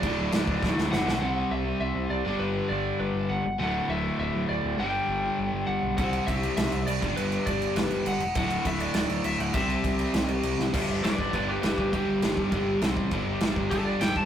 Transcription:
<<
  \new Staff \with { instrumentName = "Lead electric guitar" } { \time 4/4 \key g \major \tempo 4 = 202 d''2. fis''4 | fis''4 e''4 e''4 d''4 | b'4 d''4 b'4 fis''4 | fis''4 e''4 e''4 d''4 |
g''2. fis''4 | fis''4 e''4 e''4 d''4 | b'4 d''4 b'4 fis''4 | fis''4 e''8 d''8 d''4 e''8 fis''8 |
e''2. r4 | r4 <b' d''>8 <b' d''>8 <b' d''>8 <g' b'>8 <g' b'>8 <g' b'>8 | g'2. r4 | r2 a'8 d''8 g''8 a''8 | }
  \new Staff \with { instrumentName = "Distorted electric guitar" } { \clef bass \time 4/4 \key g \major <d, a, d>4 <d, a, d>4 <d, a, d>4 <d, a, d>4 | <c g c'>2.~ <c g c'>8 <g, d g>8~ | <g, d g>2.~ <g, d g>8 r8 | <d, a, d>1 |
<g, d g>1 | <c g c'>2.~ <c g c'>8 <g, d g>8~ | <g, d g>2.~ <g, d g>8 r8 | <d, a, d>1 |
<c g c'>1 | <g, d g>4 <g, d g>4 <g, d g>4 <g, d g>4 | <g, d g>4 <g, d g>4 <g, d g>4 <c g c'>4 | <g, d g>4 <g, d g>4 <g, d g>4 <g, d g>4 | }
  \new Staff \with { instrumentName = "Distorted electric guitar" } { \clef bass \time 4/4 \key g \major <d, a, d>4 <d, a, d>4 <d, a, d>4 <d, a, d>4 | <c g c'>4. <c g c'>2 <g, d g>8~ | <g, d g>4 <g, d g>2~ <g, d g>8 r8 | <d, a, d>4. <d, a, d>2~ <d, a, d>8 |
<g, d g>4. <g, d g>2~ <g, d g>8 | <c g c'>4. <c g c'>2 <g, d g>8~ | <g, d g>4 <g, d g>2~ <g, d g>8 r8 | <d, a, d>4. <d, a, d>2~ <d, a, d>8 |
<c g c'>4. <c g c'>2~ <c g c'>8 | <g, d g>4 <g, d g>4 <g, d g>4 <g, d g>4 | <g, d g>4 <g, d g>4 <g, d g>4 <c g c'>4 | <g, d g>4 <g, d g>4 <g, d g>4 <g, d g>4 | }
  \new Staff \with { instrumentName = "Overdriven electric guitar" } { \clef bass \time 4/4 \key g \major <d, a, d>2.~ <d, a, d>8 <d, a, d>8 | <c g c'>2.~ <c g c'>8 <g, d g>8~ | <g, d g>2.~ <g, d g>8 r8 | <d, a, d>1 |
<g, d g>1 | <c g c'>2.~ <c g c'>8 <g, d g>8~ | <g, d g>2.~ <g, d g>8 r8 | <d, a, d>1 |
<c g c'>1 | <g, d g>4 <g, d g>4 <g, d g>4 <g, d g>4 | <g, d g>4 <g, d g>4 <g, d g>4 <c g c'>4 | <g, d g>4 <g, d g>4 <g, d g>4 <g, d g>4 | }
  \new Staff \with { instrumentName = "Picked electric bass" } { \clef bass \time 4/4 \key g \major d,,8 d,,8 d,,8 d,,8 d,,8 d,,8 g,,8 b,,8 | c,4 c,4 c,8 c,8 c,8 g,,8 | g,,4 g,,4 g,,8 g,,8 g,,8 g,,8 | d,,4 d,,4 d,,8 d,,8 d,,8 d,,8 |
g,,4 g,,4 g,,8 g,,8 g,,8 b,,8 | c,4 c,4 c,8 c,8 c,8 g,,8 | g,,4 g,,4 g,,8 g,,8 g,,8 e,,8 | d,,4 d,,4 d,,8 d,,8 d,,8 d,,8 |
c,4 c,4 c,8 c,8 c,8 c,8 | g,,8 g,,8 g,,8 g,,8 g,,4 g,,8 g,,8 | g,,8 g,,8 g,,8 g,,8 g,,4 c,8 a,,8 | g,,8 g,,8 g,,8 g,,8 g,,4 g,,8 g,,8 | }
  \new DrumStaff \with { instrumentName = "Drums" } \drummode { \time 4/4 <cymc bd>4 <cymc sn>8 bd8 <bd sn>8 sn8 sn8 sn8 | r4 r4 r4 r4 | r4 r4 r4 r4 | r4 r4 r4 r4 |
r4 r4 r4 r4 | <cymc bd>8 cymc8 <cymc bd>8 cymc8 <cymc sn>8 cymc8 cymc8 <cymc bd>8 | cymc8 cymc8 <cymc bd>8 cymc8 <cymc sn>8 cymc8 cymc8 cymc8 | <cymc bd>8 cymc8 <cymc bd>8 cymc8 <cymc sn>8 cymc8 cymc8 cymc8 |
<cymc bd>8 cymc8 <cymc bd>8 cymc8 <cymc sn>8 cymc8 cymc8 sn8 | <cymc bd>4 <cymc sn>8 bd8 <cymc bd>4 <cymc sn>8 bd8 | <cymc bd>4 <cymc sn>8 bd8 <cymc bd>4 <cymc sn>8 bd8 | <cymc bd>4 <cymc sn>8 bd8 <cymc bd>4 <cymc sn>8 bd8 | }
>>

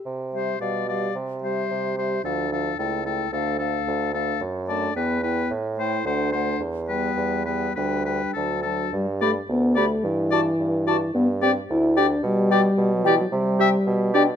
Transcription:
<<
  \new Staff \with { instrumentName = "Flute" } { \time 2/4 \key c \major \tempo 4 = 109 r8 e''8 f''8 f''8 | r8 e''4 e''8 | f''8 f''8 g''8 g''8 | f''8 f''4 f''8 |
\key g \major r8 a''8 g''8 g''8 | r8 g''8 fis''8 fis''8 | r8 g''4 g''8 | g''8 g''8 a''8 a''8 |
r8 b''16 r8. b''16 r16 | r8 a''16 r8. a''16 r16 | r8 g''16 r8. g''16 r16 | r8 g''16 r8. g''16 r16 |
r8 g''16 r8. g''16 r16 | }
  \new Staff \with { instrumentName = "Oboe" } { \time 2/4 \key c \major r8 c''8 d''8 d''8 | r8 c''4 c''8 | a'8 a'8 a'8 a'8 | a'8 a'4 a'8 |
\key g \major r8 d''8 b'8 b'8 | r8 c''8 c''8 c''8 | r8 b'4 b'8 | b'8 b'8 a'8 a'8 |
r8 d''16 r8. d''16 r16 | r8 d''16 r8. d''16 r16 | r8 d''16 r8. d''16 r16 | r8 d''16 r8. d''16 r16 |
r8 e''16 r8. d''16 r16 | }
  \new Staff \with { instrumentName = "Clarinet" } { \time 2/4 \key c \major r8 g'8 g'8 g'8 | r8 g'4 g'8 | d'8 d'8 e'8 e'8 | d'8 d'4 d'8 |
\key g \major r8 d'8 e'8 e'8 | r8 e'8 d'8 d'8 | r8 b4 b8 | d'8 d'8 d'8 d'8 |
r8 g'16 r8. g'16 r16 | r8 fis'16 r8. fis'16 r16 | r8 g'16 r8. g'16 r16 | r8 g'16 r8. g'16 r16 |
r8 g'16 r8. g'16 r16 | }
  \new Staff \with { instrumentName = "French horn" } { \clef bass \time 2/4 \key c \major r8 g8 g8 g8 | r8 g4 g8 | f8 f8 a8 a8 | a8 a4 a8 |
\key g \major r8 a8 b8 b8 | r8 a8 a8 a8 | r8 g4 g8 | g8 g8 fis8 fis8 |
g8 a8 b8 a8 | e2 | b8 c'8 e'8 d'8 | g4~ g16 fis16 e16 fis16 |
g4. d'8 | }
  \new Staff \with { instrumentName = "Bassoon" } { \clef bass \time 2/4 \key c \major c4 b,4 | c4 c4 | d,4 cis,4 | d,4 d,4 |
\key g \major fis,4 e,4 | a,4 d,4 | e,4 e,4 | d,4 d,4 |
g,4 d,4 | g,4 g,4 | g,4 d,4 | b,4 b,4 |
c4 b,4 | }
>>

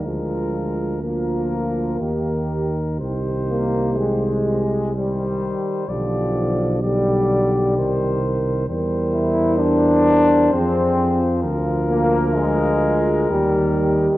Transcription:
<<
  \new Staff \with { instrumentName = "Flugelhorn" } { \time 3/4 \key c \minor \tempo 4 = 64 bes'4 bes'4 bes'4 | c''4. r8 c''4 | d''4 d''4 c''4 | c''2. |
bes'2. | }
  \new Staff \with { instrumentName = "French horn section" } { \time 3/4 \key c \minor f'4 f'4 g'4 | g'2 g'4 | g'4 g'4 bes'4 | bes'2 aes'4 |
f'2 g'4 | }
  \new Staff \with { instrumentName = "Trombone section" } { \clef bass \time 3/4 \key c \minor aes4 bes4. r8 | r8 bes8 aes4 g4 | f4 g4. r8 | r8 e'8 d'4 c'4 |
r8 bes8 aes4 g4 | }
  \new Staff \with { instrumentName = "Trombone" } { \clef bass \time 3/4 \key c \minor f4 f4 ees4 | ees4. r8 ees4 | d4 d4 ees4 | g2 f4~ |
f2 ees4 | }
  \new Staff \with { instrumentName = "Tuba" } { \clef bass \time 3/4 \key c \minor d,2 ees,4 | c,2~ c,8 r8 | b,,2 c,4 | e,2 f,4 |
d,2 ees,4 | }
>>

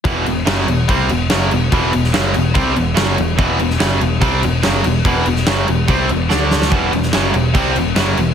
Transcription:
<<
  \new Staff \with { instrumentName = "Distorted electric guitar" } { \clef bass \time 4/4 \key d \dorian \tempo 4 = 144 <e, b, e>8 <e, b,>8 <fis, cis fis>8 <e, b,>8 <c g c'>8 <e, b,>8 <fis, cis fis>8 <e, b,>8 | <e, b, e>8 <e, b,>8 <fis, cis fis>8 <e, b,>8 <c g c'>8 <e, b,>8 <fis, cis fis>8 <e, b,>8 | <e, b, e>8 <e, b,>8 <fis, cis fis>8 <e, b,>8 <c g c'>8 <e, b,>8 <fis, cis fis>8 <e, b,>8 | <e, b, e>8 <e, b,>8 <fis, cis fis>8 <e, b,>8 <c g c'>8 <e, b,>8 <d a d'>4 |
<e, b, e>8 <e, b,>8 <fis, cis fis>8 <e, b,>8 <c g c'>8 <e, b,>8 <fis, cis fis>8 <e, b,>8 | }
  \new Staff \with { instrumentName = "Distorted electric guitar" } { \clef bass \time 4/4 \key d \dorian <e, b, e>8 <e, b,>8 <fis, cis fis>8 <e, b,>8 <c g c'>8 <e, b,>8 <fis, cis fis>8 <e, b,>8 | <e, b, e>8 <e, b,>8 <fis, cis fis>8 <e, b,>8 <c g c'>8 <e, b,>8 <fis, cis fis>8 <e, b,>8 | <e, b, e>8 <e, b,>8 <fis, cis fis>8 <e, b,>8 <c g c'>8 <e, b,>8 <fis, cis fis>8 <e, b,>8 | <e, b, e>8 <e, b,>8 <fis, cis fis>8 <e, b,>8 <c g c'>8 <e, b,>8 <d a d'>4 |
<e, b, e>8 <e, b,>8 <fis, cis fis>8 <e, b,>8 <c g c'>8 <e, b,>8 <fis, cis fis>8 <e, b,>8 | }
  \new Staff \with { instrumentName = "Distorted electric guitar" } { \clef bass \time 4/4 \key d \dorian r1 | r1 | r1 | r1 |
<e, b, e>8 <e, b,>8 <fis, cis fis>8 <e, b,>8 <c g c'>8 <e, b,>8 <fis, cis fis>8 <e, b,>8 | }
  \new Staff \with { instrumentName = "Picked electric bass" } { \clef bass \time 4/4 \key d \dorian e,,8 e,,8 fis,,8 e,,8 c,8 e,,8 fis,,8 e,,8 | e,,8 e,,8 fis,,8 e,,8 c,8 e,,8 fis,,8 e,,8 | e,,8 e,,8 fis,,8 e,,8 c,8 e,,8 fis,,8 e,,8 | e,,8 e,,8 fis,,8 e,,8 c,8 e,,8 d,4 |
e,,8 e,,8 fis,,8 e,,8 c,8 e,,8 fis,,8 e,,8 | }
  \new DrumStaff \with { instrumentName = "Drums" } \drummode { \time 4/4 <cymc bd>8 cymc8 <cymc sn>8 cymc8 <cymc bd>8 cymc8 <cymc sn>8 cymc8 | <cymc bd>8 cymc16 sn16 <cymc sn>8 cymc8 <cymc bd>8 cymc8 <cymc sn>8 cymc8 | <cymc bd>8 cymc16 sn16 <cymc sn>8 cymc8 <cymc bd>8 cymc8 <cymc sn>8 cymc8 | <cymc bd>8 cymc16 sn16 <cymc sn>8 cymc8 <cymc bd>8 cymc8 sn8 sn16 sn16 |
<cymc bd>8 cymc16 sn16 <cymc sn>8 cymc8 <cymc bd>8 cymc8 <cymc sn>8 cymc8 | }
>>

